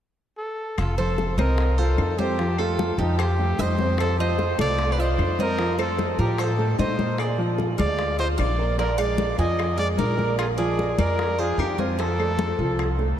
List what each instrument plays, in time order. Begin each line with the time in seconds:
0.38 trumpet A4
0.78 upright bass F1, trumpet F4, mandolin A4, high bongo, high conga, claves
0.98 grand piano F3 F4, trumpet A4, mandolin C5, high conga
1.18 high bongo, high conga
1.38 upright bass C2, grand piano C4 C5, trumpet A#4, mandolin D#5, high bongo, high conga, claves
1.58 high bongo, high conga
1.78 grand piano F4 F5, trumpet A4, mandolin C5, high bongo, high conga
1.98 upright bass F2, high bongo, low bongo, high conga, claves
2.18 grand piano C4 C5, trumpet G4, mandolin C5, high bongo, high conga
2.39 grand piano F3 F4, high bongo, high conga
2.58 grand piano A3 A4, trumpet F4, mandolin A4, high conga, claves
2.79 high bongo, high conga
2.98 upright bass F2, grand piano F3 F4, trumpet D#4, mandolin G4, high bongo, high conga
3.18 trumpet G4, mandolin C5, high bongo, high conga, claves
3.38 grand piano A3 A4, high bongo, high conga
3.58 upright bass F2, trumpet C5, mandolin D#5, high bongo, low bongo, high conga
3.78 grand piano C4 C5, high bongo, high conga
3.98 trumpet A4, mandolin C5, high bongo, high conga, claves
4.18 grand piano F3 F4, trumpet C5, mandolin D#5, high conga
4.39 high bongo, high conga
4.58 upright bass C2, grand piano A3 A4, trumpet D5, mandolin F5, high bongo, high conga, claves
4.78 high bongo, high conga
4.92 trumpet B4, mandolin D5
4.98 grand piano F4 F5, trumpet C5, mandolin D#5, high bongo, high conga
5.19 upright bass F2, high bongo, low bongo, high conga, claves
5.39 grand piano C4 C5, trumpet A#4, mandolin D#5, high bongo, high conga
5.59 grand piano F3 F4, high bongo, high conga
5.78 grand piano A3 A4, trumpet A4, mandolin C5, high conga, claves
5.98 high bongo, high conga
6.18 upright bass A2, grand piano F3 F4, trumpet G4, mandolin A#4, high bongo, high conga
6.38 trumpet A4, mandolin C5, high bongo, high conga, claves
6.58 grand piano A3 A4, high bongo, high conga
6.79 upright bass A#2, trumpet C5, mandolin D#5, high bongo, low bongo, high conga
6.99 grand piano A#3 A#4, high bongo, high conga
7.18 trumpet G#4, mandolin D5, high bongo, high conga, claves
7.38 grand piano F3 F4, high conga
7.58 high bongo, high conga
7.78 upright bass D2, grand piano G#3 G#4, trumpet D5, mandolin F5, high bongo, high conga, claves
7.99 high bongo, high conga
8.19 grand piano F4 F5, trumpet C5, mandolin D#5, high bongo, high conga
8.38 upright bass A#1, trumpet D5, mandolin F5, high bongo, low bongo, high conga, claves
8.58 grand piano A#3 A#4, high bongo
8.78 grand piano F3 F4, trumpet A#4, mandolin D5, high bongo, high conga
8.98 grand piano G#3 G#4, trumpet D5, mandolin F5, high conga, claves
9.18 high bongo, high conga
9.38 upright bass F2, grand piano F3 F4, trumpet D#5, mandolin G#5, high bongo, high conga
9.59 high bongo, high conga, claves
9.78 grand piano G#3 G#4, trumpet D5, mandolin F5, high bongo, high conga
9.98 upright bass A#1, trumpet A#4, mandolin D5, high bongo, low bongo, high conga
10.17 grand piano A#3 A#4, high bongo, high conga
10.39 trumpet F4, mandolin G#4, high bongo, high conga, claves
10.58 grand piano F3 F4, trumpet G#4, mandolin D5, high conga
10.79 high bongo, high conga
10.98 upright bass F2, grand piano G#3 G#4, trumpet A#4, mandolin D5, high bongo, high conga, claves
11.19 high bongo, high conga
11.38 grand piano F4 F5, trumpet G#4, mandolin C5, high bongo, high conga
11.58 upright bass F2, trumpet G4, mandolin A#4, high bongo, low bongo, high conga, claves
11.78 grand piano C4 C5, trumpet F4, mandolin G#4, high bongo, high conga
11.99 grand piano F3 F4, trumpet A4, mandolin C5, high bongo, high conga
12.19 grand piano A3 A4, high conga, claves
12.39 high bongo, high conga
12.58 upright bass C2, grand piano F3 F4, high bongo, high conga
12.79 high bongo, high conga, claves
12.99 grand piano A3 A4, high bongo, high conga